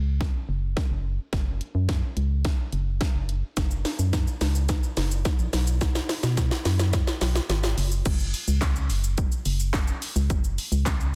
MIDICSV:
0, 0, Header, 1, 3, 480
1, 0, Start_track
1, 0, Tempo, 560748
1, 1138, Time_signature, 4, 2, 24, 8
1, 9544, End_track
2, 0, Start_track
2, 0, Title_t, "FM bass"
2, 0, Program_c, 0, 39
2, 0, Note_on_c, 0, 37, 90
2, 256, Note_off_c, 0, 37, 0
2, 417, Note_on_c, 0, 30, 89
2, 656, Note_off_c, 0, 30, 0
2, 777, Note_on_c, 0, 30, 89
2, 1016, Note_off_c, 0, 30, 0
2, 1137, Note_on_c, 0, 30, 102
2, 1376, Note_off_c, 0, 30, 0
2, 1497, Note_on_c, 0, 42, 89
2, 1736, Note_off_c, 0, 42, 0
2, 1855, Note_on_c, 0, 37, 89
2, 2174, Note_off_c, 0, 37, 0
2, 2335, Note_on_c, 0, 30, 91
2, 2575, Note_off_c, 0, 30, 0
2, 2694, Note_on_c, 0, 30, 84
2, 2934, Note_off_c, 0, 30, 0
2, 3056, Note_on_c, 0, 30, 104
2, 3295, Note_off_c, 0, 30, 0
2, 3416, Note_on_c, 0, 42, 92
2, 3656, Note_off_c, 0, 42, 0
2, 3777, Note_on_c, 0, 37, 92
2, 4095, Note_off_c, 0, 37, 0
2, 4257, Note_on_c, 0, 30, 95
2, 4496, Note_off_c, 0, 30, 0
2, 4617, Note_on_c, 0, 34, 89
2, 4697, Note_off_c, 0, 34, 0
2, 4738, Note_on_c, 0, 35, 105
2, 5136, Note_off_c, 0, 35, 0
2, 5337, Note_on_c, 0, 47, 92
2, 5576, Note_off_c, 0, 47, 0
2, 5697, Note_on_c, 0, 42, 91
2, 6016, Note_off_c, 0, 42, 0
2, 6178, Note_on_c, 0, 35, 93
2, 6337, Note_off_c, 0, 35, 0
2, 6416, Note_on_c, 0, 32, 90
2, 6633, Note_off_c, 0, 32, 0
2, 6657, Note_on_c, 0, 30, 90
2, 6873, Note_off_c, 0, 30, 0
2, 6897, Note_on_c, 0, 30, 112
2, 7136, Note_off_c, 0, 30, 0
2, 7257, Note_on_c, 0, 37, 94
2, 7615, Note_on_c, 0, 30, 99
2, 7628, Note_off_c, 0, 37, 0
2, 7934, Note_off_c, 0, 30, 0
2, 8097, Note_on_c, 0, 30, 95
2, 8495, Note_off_c, 0, 30, 0
2, 8696, Note_on_c, 0, 37, 106
2, 8817, Note_on_c, 0, 30, 110
2, 8830, Note_off_c, 0, 37, 0
2, 9056, Note_off_c, 0, 30, 0
2, 9175, Note_on_c, 0, 37, 97
2, 9544, Note_off_c, 0, 37, 0
2, 9544, End_track
3, 0, Start_track
3, 0, Title_t, "Drums"
3, 176, Note_on_c, 9, 38, 57
3, 177, Note_on_c, 9, 36, 113
3, 262, Note_off_c, 9, 38, 0
3, 263, Note_off_c, 9, 36, 0
3, 656, Note_on_c, 9, 38, 60
3, 658, Note_on_c, 9, 36, 113
3, 742, Note_off_c, 9, 38, 0
3, 743, Note_off_c, 9, 36, 0
3, 1136, Note_on_c, 9, 42, 62
3, 1137, Note_on_c, 9, 36, 106
3, 1137, Note_on_c, 9, 38, 66
3, 1222, Note_off_c, 9, 36, 0
3, 1222, Note_off_c, 9, 38, 0
3, 1222, Note_off_c, 9, 42, 0
3, 1377, Note_on_c, 9, 42, 46
3, 1463, Note_off_c, 9, 42, 0
3, 1615, Note_on_c, 9, 38, 67
3, 1616, Note_on_c, 9, 42, 76
3, 1617, Note_on_c, 9, 36, 92
3, 1701, Note_off_c, 9, 38, 0
3, 1701, Note_off_c, 9, 42, 0
3, 1703, Note_off_c, 9, 36, 0
3, 1855, Note_on_c, 9, 42, 48
3, 1940, Note_off_c, 9, 42, 0
3, 2094, Note_on_c, 9, 42, 74
3, 2095, Note_on_c, 9, 38, 77
3, 2097, Note_on_c, 9, 36, 115
3, 2179, Note_off_c, 9, 42, 0
3, 2181, Note_off_c, 9, 38, 0
3, 2182, Note_off_c, 9, 36, 0
3, 2333, Note_on_c, 9, 42, 51
3, 2418, Note_off_c, 9, 42, 0
3, 2574, Note_on_c, 9, 38, 76
3, 2574, Note_on_c, 9, 42, 56
3, 2577, Note_on_c, 9, 36, 112
3, 2659, Note_off_c, 9, 42, 0
3, 2660, Note_off_c, 9, 38, 0
3, 2662, Note_off_c, 9, 36, 0
3, 2815, Note_on_c, 9, 42, 55
3, 2901, Note_off_c, 9, 42, 0
3, 3055, Note_on_c, 9, 38, 84
3, 3055, Note_on_c, 9, 42, 67
3, 3055, Note_on_c, 9, 82, 67
3, 3056, Note_on_c, 9, 36, 105
3, 3140, Note_off_c, 9, 42, 0
3, 3140, Note_off_c, 9, 82, 0
3, 3141, Note_off_c, 9, 38, 0
3, 3142, Note_off_c, 9, 36, 0
3, 3174, Note_on_c, 9, 82, 49
3, 3260, Note_off_c, 9, 82, 0
3, 3296, Note_on_c, 9, 38, 85
3, 3297, Note_on_c, 9, 46, 67
3, 3297, Note_on_c, 9, 82, 48
3, 3381, Note_off_c, 9, 38, 0
3, 3382, Note_off_c, 9, 46, 0
3, 3382, Note_off_c, 9, 82, 0
3, 3417, Note_on_c, 9, 82, 81
3, 3502, Note_off_c, 9, 82, 0
3, 3536, Note_on_c, 9, 38, 88
3, 3537, Note_on_c, 9, 36, 98
3, 3537, Note_on_c, 9, 42, 77
3, 3537, Note_on_c, 9, 82, 77
3, 3622, Note_off_c, 9, 36, 0
3, 3622, Note_off_c, 9, 38, 0
3, 3622, Note_off_c, 9, 42, 0
3, 3622, Note_off_c, 9, 82, 0
3, 3658, Note_on_c, 9, 82, 40
3, 3744, Note_off_c, 9, 82, 0
3, 3775, Note_on_c, 9, 46, 68
3, 3775, Note_on_c, 9, 82, 48
3, 3776, Note_on_c, 9, 38, 87
3, 3861, Note_off_c, 9, 46, 0
3, 3861, Note_off_c, 9, 82, 0
3, 3862, Note_off_c, 9, 38, 0
3, 3896, Note_on_c, 9, 82, 74
3, 3981, Note_off_c, 9, 82, 0
3, 4013, Note_on_c, 9, 42, 73
3, 4013, Note_on_c, 9, 82, 74
3, 4014, Note_on_c, 9, 38, 89
3, 4016, Note_on_c, 9, 36, 113
3, 4098, Note_off_c, 9, 42, 0
3, 4098, Note_off_c, 9, 82, 0
3, 4100, Note_off_c, 9, 38, 0
3, 4102, Note_off_c, 9, 36, 0
3, 4136, Note_on_c, 9, 82, 55
3, 4222, Note_off_c, 9, 82, 0
3, 4253, Note_on_c, 9, 46, 74
3, 4253, Note_on_c, 9, 82, 52
3, 4256, Note_on_c, 9, 38, 99
3, 4339, Note_off_c, 9, 46, 0
3, 4339, Note_off_c, 9, 82, 0
3, 4341, Note_off_c, 9, 38, 0
3, 4378, Note_on_c, 9, 82, 75
3, 4464, Note_off_c, 9, 82, 0
3, 4495, Note_on_c, 9, 42, 57
3, 4495, Note_on_c, 9, 82, 58
3, 4496, Note_on_c, 9, 38, 93
3, 4497, Note_on_c, 9, 36, 122
3, 4581, Note_off_c, 9, 38, 0
3, 4581, Note_off_c, 9, 42, 0
3, 4581, Note_off_c, 9, 82, 0
3, 4583, Note_off_c, 9, 36, 0
3, 4613, Note_on_c, 9, 82, 46
3, 4699, Note_off_c, 9, 82, 0
3, 4735, Note_on_c, 9, 38, 100
3, 4735, Note_on_c, 9, 46, 78
3, 4735, Note_on_c, 9, 82, 56
3, 4821, Note_off_c, 9, 38, 0
3, 4821, Note_off_c, 9, 46, 0
3, 4821, Note_off_c, 9, 82, 0
3, 4855, Note_on_c, 9, 82, 77
3, 4941, Note_off_c, 9, 82, 0
3, 4975, Note_on_c, 9, 38, 97
3, 4975, Note_on_c, 9, 42, 69
3, 4975, Note_on_c, 9, 82, 69
3, 4976, Note_on_c, 9, 36, 104
3, 5060, Note_off_c, 9, 42, 0
3, 5060, Note_off_c, 9, 82, 0
3, 5061, Note_off_c, 9, 38, 0
3, 5062, Note_off_c, 9, 36, 0
3, 5095, Note_on_c, 9, 82, 50
3, 5096, Note_on_c, 9, 38, 101
3, 5180, Note_off_c, 9, 82, 0
3, 5181, Note_off_c, 9, 38, 0
3, 5215, Note_on_c, 9, 38, 105
3, 5216, Note_on_c, 9, 46, 72
3, 5216, Note_on_c, 9, 82, 49
3, 5301, Note_off_c, 9, 38, 0
3, 5301, Note_off_c, 9, 46, 0
3, 5301, Note_off_c, 9, 82, 0
3, 5335, Note_on_c, 9, 38, 109
3, 5336, Note_on_c, 9, 82, 81
3, 5421, Note_off_c, 9, 38, 0
3, 5421, Note_off_c, 9, 82, 0
3, 5455, Note_on_c, 9, 38, 98
3, 5456, Note_on_c, 9, 36, 101
3, 5456, Note_on_c, 9, 42, 79
3, 5456, Note_on_c, 9, 82, 84
3, 5541, Note_off_c, 9, 38, 0
3, 5541, Note_off_c, 9, 42, 0
3, 5541, Note_off_c, 9, 82, 0
3, 5542, Note_off_c, 9, 36, 0
3, 5575, Note_on_c, 9, 38, 102
3, 5576, Note_on_c, 9, 82, 41
3, 5661, Note_off_c, 9, 38, 0
3, 5662, Note_off_c, 9, 82, 0
3, 5695, Note_on_c, 9, 46, 71
3, 5695, Note_on_c, 9, 82, 52
3, 5696, Note_on_c, 9, 38, 107
3, 5781, Note_off_c, 9, 46, 0
3, 5781, Note_off_c, 9, 82, 0
3, 5782, Note_off_c, 9, 38, 0
3, 5817, Note_on_c, 9, 38, 109
3, 5817, Note_on_c, 9, 82, 79
3, 5902, Note_off_c, 9, 38, 0
3, 5903, Note_off_c, 9, 82, 0
3, 5934, Note_on_c, 9, 42, 76
3, 5934, Note_on_c, 9, 82, 71
3, 5935, Note_on_c, 9, 38, 111
3, 5937, Note_on_c, 9, 36, 119
3, 6019, Note_off_c, 9, 42, 0
3, 6019, Note_off_c, 9, 82, 0
3, 6021, Note_off_c, 9, 38, 0
3, 6022, Note_off_c, 9, 36, 0
3, 6055, Note_on_c, 9, 38, 112
3, 6055, Note_on_c, 9, 82, 57
3, 6141, Note_off_c, 9, 38, 0
3, 6141, Note_off_c, 9, 82, 0
3, 6173, Note_on_c, 9, 46, 73
3, 6173, Note_on_c, 9, 82, 52
3, 6176, Note_on_c, 9, 38, 114
3, 6259, Note_off_c, 9, 46, 0
3, 6259, Note_off_c, 9, 82, 0
3, 6262, Note_off_c, 9, 38, 0
3, 6296, Note_on_c, 9, 38, 109
3, 6297, Note_on_c, 9, 82, 79
3, 6382, Note_off_c, 9, 38, 0
3, 6383, Note_off_c, 9, 82, 0
3, 6417, Note_on_c, 9, 38, 114
3, 6417, Note_on_c, 9, 42, 61
3, 6417, Note_on_c, 9, 82, 60
3, 6502, Note_off_c, 9, 42, 0
3, 6502, Note_off_c, 9, 82, 0
3, 6503, Note_off_c, 9, 38, 0
3, 6534, Note_on_c, 9, 82, 47
3, 6536, Note_on_c, 9, 38, 115
3, 6620, Note_off_c, 9, 82, 0
3, 6622, Note_off_c, 9, 38, 0
3, 6657, Note_on_c, 9, 46, 82
3, 6657, Note_on_c, 9, 82, 58
3, 6742, Note_off_c, 9, 46, 0
3, 6742, Note_off_c, 9, 82, 0
3, 6776, Note_on_c, 9, 82, 76
3, 6862, Note_off_c, 9, 82, 0
3, 6896, Note_on_c, 9, 42, 65
3, 6896, Note_on_c, 9, 49, 103
3, 6896, Note_on_c, 9, 82, 66
3, 6897, Note_on_c, 9, 36, 115
3, 6981, Note_off_c, 9, 42, 0
3, 6981, Note_off_c, 9, 82, 0
3, 6982, Note_off_c, 9, 36, 0
3, 6982, Note_off_c, 9, 49, 0
3, 7017, Note_on_c, 9, 82, 54
3, 7102, Note_off_c, 9, 82, 0
3, 7138, Note_on_c, 9, 46, 73
3, 7138, Note_on_c, 9, 82, 52
3, 7224, Note_off_c, 9, 46, 0
3, 7224, Note_off_c, 9, 82, 0
3, 7258, Note_on_c, 9, 82, 83
3, 7343, Note_off_c, 9, 82, 0
3, 7372, Note_on_c, 9, 38, 86
3, 7377, Note_on_c, 9, 39, 106
3, 7377, Note_on_c, 9, 42, 83
3, 7377, Note_on_c, 9, 82, 84
3, 7378, Note_on_c, 9, 36, 98
3, 7458, Note_off_c, 9, 38, 0
3, 7463, Note_off_c, 9, 36, 0
3, 7463, Note_off_c, 9, 39, 0
3, 7463, Note_off_c, 9, 42, 0
3, 7463, Note_off_c, 9, 82, 0
3, 7498, Note_on_c, 9, 82, 44
3, 7583, Note_off_c, 9, 82, 0
3, 7617, Note_on_c, 9, 46, 70
3, 7617, Note_on_c, 9, 82, 51
3, 7702, Note_off_c, 9, 46, 0
3, 7702, Note_off_c, 9, 82, 0
3, 7738, Note_on_c, 9, 82, 76
3, 7823, Note_off_c, 9, 82, 0
3, 7855, Note_on_c, 9, 42, 78
3, 7855, Note_on_c, 9, 82, 76
3, 7858, Note_on_c, 9, 36, 121
3, 7941, Note_off_c, 9, 42, 0
3, 7941, Note_off_c, 9, 82, 0
3, 7943, Note_off_c, 9, 36, 0
3, 7976, Note_on_c, 9, 82, 55
3, 8062, Note_off_c, 9, 82, 0
3, 8093, Note_on_c, 9, 46, 75
3, 8093, Note_on_c, 9, 82, 54
3, 8178, Note_off_c, 9, 46, 0
3, 8178, Note_off_c, 9, 82, 0
3, 8217, Note_on_c, 9, 82, 76
3, 8303, Note_off_c, 9, 82, 0
3, 8332, Note_on_c, 9, 38, 96
3, 8335, Note_on_c, 9, 42, 61
3, 8335, Note_on_c, 9, 82, 61
3, 8337, Note_on_c, 9, 39, 118
3, 8338, Note_on_c, 9, 36, 124
3, 8417, Note_off_c, 9, 38, 0
3, 8421, Note_off_c, 9, 42, 0
3, 8421, Note_off_c, 9, 82, 0
3, 8422, Note_off_c, 9, 39, 0
3, 8424, Note_off_c, 9, 36, 0
3, 8454, Note_on_c, 9, 82, 47
3, 8539, Note_off_c, 9, 82, 0
3, 8577, Note_on_c, 9, 46, 83
3, 8577, Note_on_c, 9, 82, 58
3, 8663, Note_off_c, 9, 46, 0
3, 8663, Note_off_c, 9, 82, 0
3, 8698, Note_on_c, 9, 82, 76
3, 8783, Note_off_c, 9, 82, 0
3, 8817, Note_on_c, 9, 42, 65
3, 8817, Note_on_c, 9, 82, 67
3, 8818, Note_on_c, 9, 36, 112
3, 8903, Note_off_c, 9, 36, 0
3, 8903, Note_off_c, 9, 42, 0
3, 8903, Note_off_c, 9, 82, 0
3, 8938, Note_on_c, 9, 82, 52
3, 9024, Note_off_c, 9, 82, 0
3, 9059, Note_on_c, 9, 46, 72
3, 9059, Note_on_c, 9, 82, 48
3, 9145, Note_off_c, 9, 46, 0
3, 9145, Note_off_c, 9, 82, 0
3, 9179, Note_on_c, 9, 82, 81
3, 9264, Note_off_c, 9, 82, 0
3, 9293, Note_on_c, 9, 38, 87
3, 9298, Note_on_c, 9, 36, 99
3, 9298, Note_on_c, 9, 39, 106
3, 9298, Note_on_c, 9, 42, 86
3, 9298, Note_on_c, 9, 82, 87
3, 9379, Note_off_c, 9, 38, 0
3, 9384, Note_off_c, 9, 36, 0
3, 9384, Note_off_c, 9, 39, 0
3, 9384, Note_off_c, 9, 42, 0
3, 9384, Note_off_c, 9, 82, 0
3, 9420, Note_on_c, 9, 82, 41
3, 9506, Note_off_c, 9, 82, 0
3, 9544, End_track
0, 0, End_of_file